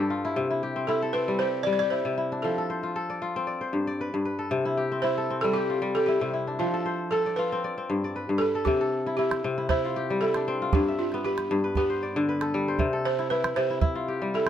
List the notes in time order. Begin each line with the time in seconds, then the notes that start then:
Already playing: G2 G4 A4 B4 C5 D5
0.10 F4
0.25 E4
0.36 C3
0.50 E4
0.63 G4
0.76 C4
0.87 E4 A4
1.02 A4
1.13 C4 B4
1.28 G3
1.39 G4 C5
1.63 G3 D5
1.73 D5
1.79 G4 D5
1.90 E4 C5
2.05 C3
2.18 E4
2.32 D4
2.42 F3 A4
2.58 A4
2.70 C5
2.83 F4
2.96 A4
3.10 D5
3.22 F4
3.36 C4
3.47 D5
3.61 C5
3.73 G2
3.87 D5
4.01 B4
4.14 G2
4.25 B4
4.39 A4
4.51 C3
4.65 E4
4.77 G4
4.92 C4
5.02 E4 C5
5.18 A4
5.30 C4
5.41 G3 A4
5.53 G4
5.70 F4
5.82 G3
5.95 G4 A4
6.06 E4 G4
6.21 C3
6.33 E4
6.47 D4
6.59 F3 F4
6.74 A4
6.86 C5
7.11 A4
7.26 D5
7.36 F4 B4
7.52 C4
7.64 D5
7.78 C4
7.90 G2
8.04 D5
8.16 B4
8.29 G2
8.38 A4 B4
8.55 A4
8.65 C3 G4, calabash thump
8.81 A4
9.06 E4
9.17 E4 G4
9.31 calabash click
9.44 C3
9.58 E4
9.69 E4 C5, calabash thump
9.85 F4
9.96 G4
10.10 G3
10.21 E4 A4
10.34 D4, calabash click
10.48 C4
10.62 F4
10.73 G2 G4, calabash thump
10.88 E5
10.99 F4
11.12 B3, calabash click
11.24 G4 B4
11.38 calabash click
11.51 G2
11.64 B4
11.75 B3 G4, calabash thump
11.90 C5
12.03 D5
12.16 D3
12.29 B4
12.41 A4, calabash click
12.54 G3
12.68 C5
12.79 C3, calabash thump
12.93 A4
13.05 C5
13.19 E4, calabash click
13.30 E4 B4
13.44 calabash click
13.56 C3 C5
13.70 E4
13.81 E4, calabash thump
13.95 F4
14.08 G4
14.22 G3
14.34 E4 A4